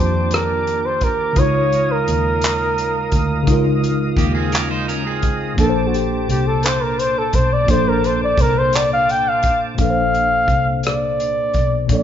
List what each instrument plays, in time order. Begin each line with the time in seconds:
Already playing: fingered electric bass F2, tine electric piano D#3 A#3 D4 F4 A5, tonewheel organ G4 D5 D6
0.00 flugelhorn C5
0.31 flugelhorn A#4, cross-stick, closed hi-hat
0.67 closed hi-hat
0.86 flugelhorn C5
1.01 flugelhorn A#4, kick, closed hi-hat
1.33 tine electric piano C#3 G#3, tonewheel organ D#5 F5 D#6, kick, closed hi-hat
1.37 fingered electric bass C#2, tine electric piano D#4 F4, flugelhorn C#5
1.41 tine electric piano C#5
1.72 closed hi-hat
1.92 flugelhorn A#4
2.08 fingered electric bass D#2, closed hi-hat
2.41 clap, closed hi-hat
2.78 closed hi-hat
3.12 fingered electric bass D2, kick, closed hi-hat
3.43 tine electric piano C#3 G#3, kick, closed hi-hat
3.48 fingered electric bass C#2, tine electric piano D#4 F4
3.52 tine electric piano A#4
3.84 closed hi-hat
4.17 fingered electric bass D#2, clean electric guitar A#3 G4, kick, closed hi-hat
4.35 clean electric guitar C4 G#4
4.52 clean electric guitar C#4 A#4, clap, closed hi-hat
4.71 clean electric guitar D#4 C5
4.88 clean electric guitar C#4 A#4, closed hi-hat
5.06 clean electric guitar C4 G#4
5.22 kick, closed hi-hat
5.54 tine electric piano A#2 A#3, tonewheel organ C5 A5 D6, kick
5.58 fingered electric bass A#1, tine electric piano D4 A4, flugelhorn A4, closed hi-hat
5.63 tine electric piano A#4
5.69 tine electric piano C5
5.88 flugelhorn F#4
5.94 flugelhorn G4, closed hi-hat
6.29 fingered electric bass C2, flugelhorn G4, closed hi-hat
6.47 flugelhorn A4
6.63 flugelhorn C5, clap, closed hi-hat
6.83 flugelhorn A#4
6.99 flugelhorn C5, closed hi-hat
7.18 flugelhorn A4
7.33 fingered electric bass B1, flugelhorn C5, kick, closed hi-hat
7.53 flugelhorn D5
7.65 tine electric piano A#2 A#3, kick, closed hi-hat
7.69 fingered electric bass A#1, tine electric piano D4 A4, flugelhorn C5
7.74 tine electric piano C5
7.89 flugelhorn A#4
8.04 flugelhorn C5, closed hi-hat
8.24 flugelhorn D5
8.38 fingered electric bass C2, flugelhorn A#4, kick, closed hi-hat
8.59 flugelhorn C5
8.73 flugelhorn D5, clap, closed hi-hat
8.93 flugelhorn F5
9.09 flugelhorn G5, closed hi-hat
9.29 flugelhorn F5
9.43 kick, closed hi-hat
9.75 tine electric piano A#2 A#3, kick, closed hi-hat
9.79 fingered electric bass A#1, tine electric piano D4 A4, flugelhorn F5
9.84 tine electric piano B4
9.90 tine electric piano C5
10.14 closed hi-hat
10.48 fingered electric bass C2, kick, closed hi-hat
10.83 flugelhorn D5, cross-stick, closed hi-hat
11.20 closed hi-hat
11.54 fingered electric bass B1, kick, closed hi-hat
11.86 fingered electric bass A#1, tine electric piano A#2 A#3, kick, closed hi-hat
11.91 tine electric piano D4 A4, flugelhorn D5
11.95 tine electric piano D5